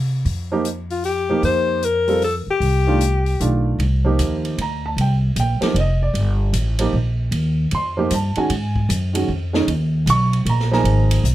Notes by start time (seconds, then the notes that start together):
Already playing: C3
0.25 F2, open hi-hat
0.52 F3 A#3 D#4 G4
0.65 closed hi-hat
0.90 F4, open hi-hat
1.04 G4, open hi-hat
1.29 F3 A#3 D#4 G4
1.43 F2 C5, open hi-hat
1.83 A#4, closed hi-hat
2.08 G3 C4 F4 A4, open hi-hat
2.22 A4, open hi-hat
2.47 G4, muted upright bass stroke
2.60 C2, open hi-hat
2.87 D#3 A3 D4 F4
3.01 closed hi-hat
3.26 open hi-hat
3.40 B1 D#3 A3 D4 F4, closed hi-hat
3.79 C2, ride
4.04 F3 A#3 D#4 G4
4.19 D#2, hi-hat pedal, ride
4.45 ride
4.58 D2 A#5, ride
4.86 A5
4.97 C2, ride
5.01 G5
5.36 A#1 G5, hi-hat pedal, ride
5.61 F3 A#3 D#4 G4, muted upright bass stroke, snare, ride
5.74 F1 D5, ride
5.80 D#5
6.03 D5
6.14 G1, ride
6.53 A1, hi-hat pedal, ride
6.79 F3 A#3 D#4 G4, ride
6.93 A#1
7.31 D#2, ride
7.71 F2 C6, ride
7.97 F3 A#3 D#4 G4
8.10 G2 A5, hi-hat pedal, ride
8.36 D#3 G#3 C#4 F#4 G#5, muted upright bass stroke, ride
8.50 G#2, ride
8.76 kick
8.89 F#2, hi-hat pedal, ride
9.13 D#3 G#3 C#4 F#4, ride
9.28 F2
9.53 D#3 G#3 C#4 D#4, snare
9.67 D#2, ride
10.06 B1 C#6, hi-hat pedal, ride
10.33 ride
10.45 A#1, ride
10.49 A#5
10.60 snare
10.71 F3 A#3 D#4 G#4 A#5, snare
10.84 G#1, ride
11.11 ride
11.24 B1, hi-hat pedal